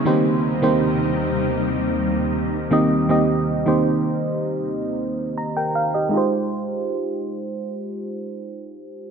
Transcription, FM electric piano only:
\new Staff \with { instrumentName = "FM electric piano" } { \time 4/4 \key f \minor \tempo 4 = 79 << { r1 | r2. bes''16 <bes' g''>16 f''16 <g' ees''>16~ | <g' ees''>16 r2. r8. | } \\ { <ees bes c' ees' g' c''>8 r16 <ees bes c' ees' g' c''>4~ <ees bes c' ees' g' c''>16 r4. <ees bes c' ees' g' ees''>16 r16 | <ees bes c' ees' g' ees''>8 r16 <ees bes c' ees' g' c''>4~ <ees bes c' ees' g' c''>16 r2 | <aes ees' f' g' c''>1 | } >> }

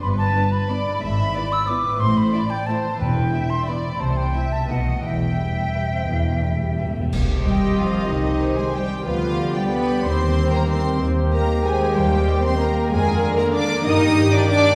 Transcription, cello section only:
\new Staff \with { instrumentName = "Cello section" } { \clef bass \time 3/4 \key e \minor \tempo 4 = 183 g,4 r2 | gis,4 r2 | a,4 r2 | e,4 r2 |
c4 r4 b,4 | e,4 r2 | e,4 r2 | \key c \minor r4 g4 f4 |
ees4. aes8 g4 | f4. g8 b4 | c'4. bes8 c'4 | r4 bes4 aes4 |
g4. c'8 bes4 | aes4. bes8 d'4 | ees'4. d'8 d'4 | }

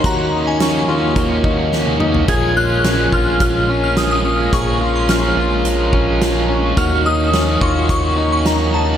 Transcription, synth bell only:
\new Staff \with { instrumentName = "Synth bell" } { \time 4/4 \key bes \minor \tempo 4 = 107 bes''8. aes''16 des'''4 r2 | aes'''8 ges'''4 f'''8 f'''8. f'''16 ees'''16 ees'''8. | des'''8. c'''16 f'''4 r2 | f'''8 ees'''4 des'''8 des'''8. des'''16 bes''8 a''8 | }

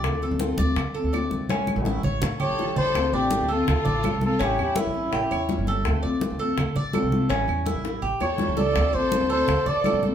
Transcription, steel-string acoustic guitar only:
\new Staff \with { instrumentName = "Steel-string acoustic guitar" } { \time 4/4 \key d \minor \tempo 4 = 165 <d a c' f'>8 <a c' f'>8 <d a c' f'>8 <a c' f'>8 r8 <a c' f'>8 <d a c' f'>4 | <e g cis' e'>8 <g cis' e'>8 <e g cis' e'>8 <g cis' e'>8 r8 <g cis' e'>8 <e g cis' e'>4 | <d a c' f'>8 <a c' f'>8 <d a c' f'>8 <a c' f'>8 r4 <d a c' f'>8 <a c' f'>8 | <e g cis' e'>8 <g cis' e'>8 <e g cis' e'>8 <g cis' e'>8 r4 <e g cis' e'>8 <g cis' e'>8 |
<d a c' f'>8 <a c' f'>8 <d a c' f'>8 <a c' f'>8 r4 <d a c' f'>8 <a c' f'>8 | <e g cis' e'>8 <g cis' e'>8 <e g cis' e'>8 <g cis' e'>8 r4 <e g cis' e'>8 <g cis' e'>8 | <d a c' f'>8 <a c' f'>8 <d a c' f'>8 <a c' f'>8 r4 <d a c' f'>8 <a c' f'>8 | }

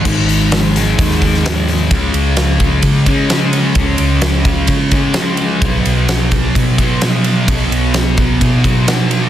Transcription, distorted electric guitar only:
\new Staff \with { instrumentName = "Distorted electric guitar" } { \clef bass \time 4/4 \key gis \phrygian \tempo 4 = 129 <gis, dis gis>4. <dis gis>8 <gis, dis gis>8 <dis gis>8 <gis, dis gis>8 <dis gis>8 | <cis gis cis'>2~ <cis gis cis'>8 <cis gis cis'>8 <cis gis cis'>4 | <cis gis cis'>2~ <cis gis cis'>8 <cis gis cis'>8 <cis gis cis'>4 | <b, fis b>2~ <b, fis b>8 <b, fis b>8 <b, fis b>4 |
<b, fis b>2~ <b, fis b>8 <b, fis b>8 <b, fis b>4 | }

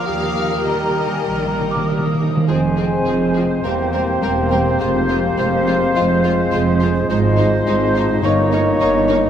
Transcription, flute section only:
\new Staff \with { instrumentName = "Flute section" } { \time 4/4 \key ees \major \tempo 4 = 104 ees'''4 bes''8. aes''16 bes''8. d'''16 ees'''4 | \key f \minor aes''2 g''2 | f''1 | ees''1 | }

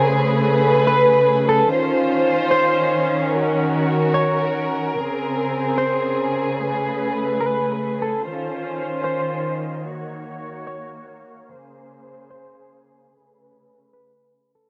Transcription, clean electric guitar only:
\new Staff \with { instrumentName = "Clean electric guitar" } { \time 4/4 \key des \major \tempo 4 = 147 r2 b'4. a'8 | r2 c''2 | r2 des''4 r4 | r2 c''2 |
r2 b'4. a'8 | r2 c''2 | r2 des''4 r4 | r2 c''2 |
r2 b'4. a'8 | }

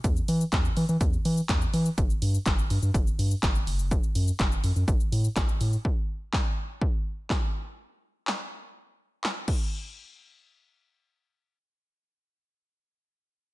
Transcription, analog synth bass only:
\new Staff \with { instrumentName = "Analog synth bass" } { \clef bass \time 4/4 \key e \dorian \tempo 4 = 124 e,8 e8 e,8 e16 e16 e,8 e8 e,8 e8 | g,,8 g,8 g,,8 g,16 g,16 g,,8 g,8 g,,8 fis,,8~ | fis,,8 fis,8 fis,,8 fis,16 fis,16 a,,8 a,8 a,,8 a,8 | r1 |
r1 | r1 | r1 | }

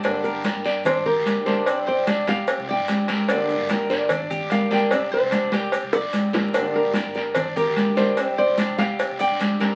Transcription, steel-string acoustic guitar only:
\new Staff \with { instrumentName = "Steel-string acoustic guitar" } { \time 4/4 \key g \minor \tempo 4 = 147 <d g bes d' g'>4 <g bes d' g'>4 r4 <g bes d' g'>8 <g bes d' g'>8 | <c g c' d' g'>4 <g c' d' g'>4 r4 <g c' d' g'>8 <g c' d' g'>8 | <d g bes d' g'>4 <g bes d' g'>4 r4 <g bes d' g'>8 <g bes d' g'>8 | <c g c' d' g'>4 <g c' d' g'>4 r4 <g c' d' g'>8 <g c' d' g'>8 |
<d g bes d' g'>4 <g bes d' g'>4 r4 <g bes d' g'>8 <g bes d' g'>8 | <c g c' d' g'>4 <g c' d' g'>4 r4 <g c' d' g'>8 <g c' d' g'>8 | }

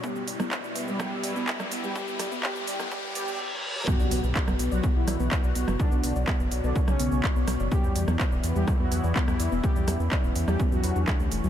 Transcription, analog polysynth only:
\new Staff \with { instrumentName = "Analog polysynth" } { \time 4/4 \key b \minor \tempo 4 = 125 <g g'>8. r4 <g g'>16 <g g'>8. r4 <g g'>16 | <g g'>8. r16 <g g'>8. r16 <g g'>8 <g g'>8 r4 | <fis fis'>8. r4 <fis fis'>16 r16 <e e'>8. r4 | <d d'>8. r4 <d d'>16 r16 <cis cis'>8. r4 |
<g g'>8. r4 <g g'>16 r16 <fis fis'>8. r4 | <g g'>8. r4 <g g'>16 r16 <fis fis'>8. r4 | }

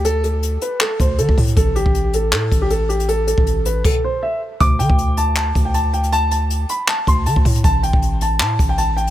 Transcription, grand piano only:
\new Staff \with { instrumentName = "Grand piano" } { \time 4/4 \key d \dorian \tempo 4 = 158 a'8 a'4 b'8 a'8 c''8 a'8 r8 | a'8 g'4 a'8 a'8. g'16 a'8 g'8 | a'8 a'4 b'8 a'8 c''8 e''8 r8 | d'''8 g''4 a''8 a''8. g''16 a''8 g''8 |
a''8 a''4 b''8 a''8 c'''8 a''8 r8 | a''8 g''4 a''8 a''8. g''16 a''8 g''8 | }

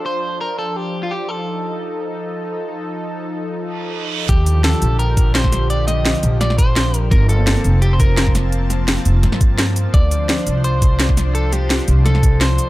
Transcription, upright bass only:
\new Staff \with { instrumentName = "Upright bass" } { \clef bass \time 4/4 \key d \phrygian \tempo 4 = 170 r1 | r1 | r1 | ees,4 r8 bes,,2~ bes,,8~ |
bes,,4 r8 bes,,2~ bes,,8 | g,,4 r8 f,,2~ f,,8~ | f,,4 r8 f,,8 g,4. r8 | d,4 r8 c,2~ c,8~ |
c,4 r8 c,2 r8 | }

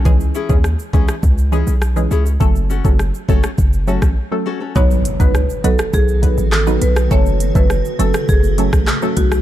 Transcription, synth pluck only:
\new Staff \with { instrumentName = "Synth pluck" } { \time 4/4 \key fis \dorian \tempo 4 = 102 <e gis cis' gis'>8. <e gis cis' gis'>16 r8 <e gis cis' gis'>16 r8. <e gis cis' gis'>16 r8 <e gis cis' gis'>16 r8 | <fis a cis' a'>8. <fis a cis' a'>16 r8 <fis a cis' a'>16 r8. <fis a cis' a'>16 r8 <fis a cis' a'>16 r8 | <fis b dis' b'>8. <fis b dis' b'>16 r8 <fis b dis' b'>16 r8. <fis b dis' b'>16 r8 <fis b dis' b'>16 r8 | <fis a cis' a'>8. <fis a cis' a'>16 r8 <fis a cis' a'>16 r8. <fis a cis' a'>16 r8 <fis a cis' a'>16 r8 | }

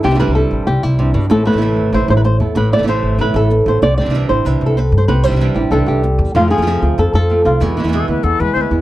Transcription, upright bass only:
\new Staff \with { instrumentName = "Upright bass" } { \clef bass \time 4/4 \tempo 4 = 190 c,8. c,8. a,,8 c,8 c,4 g,8 | a,,8. a,,8. gis,,8 a,,8 a,,4 e,8 | a,,8. a,,8. gis,,8 a,,8 a,,4 a,,8 | c,8. c,8. a,,8 c,8 c,4 g,8 |
c,8. c,8. a,,8 c,8 c,4 e,8 | f,8. f,8. d,8 f,8 f,4 c,8 | e,8. e,8. d,8 e,8 e,8 d,8 e,8 | }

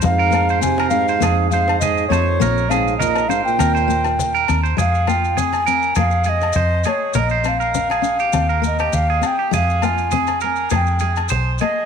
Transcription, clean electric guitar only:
\new Staff \with { instrumentName = "Clean electric guitar" } { \time 4/4 \key f \minor \tempo 4 = 101 r16 bes'8 c''8 bes'8 c''16 aes'8 c''8 aes'8 c''8 | bes'8 aes'8 bes'8 c''8 bes'16 c''8 r8 bes'8 c''16 | aes'8 f'8 aes'8 bes'8 aes'8 aes'8 c''8 aes'8 | bes'16 c''8 bes'8 aes'8 g'8 bes'8 g'8 aes'8 g'16 |
aes'8 f'8 aes'8 bes'8 aes'8 aes'8 c''8 aes'8 | }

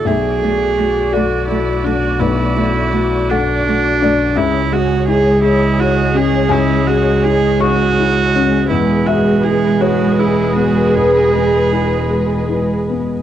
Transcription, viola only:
\new Staff \with { instrumentName = "Viola" } { \time 6/8 \key e \mixolydian \tempo 4. = 55 gis'4. fis'8 e'8 fis'8 | e'4. d'4. | e'8 fis'8 gis'8 e'8 fis'8 gis'8 | e'8 fis'8 gis'8 fis'4. |
e'8 fis'8 gis'8 fis'8 e'8 fis'8 | gis'2~ gis'16 r8. | }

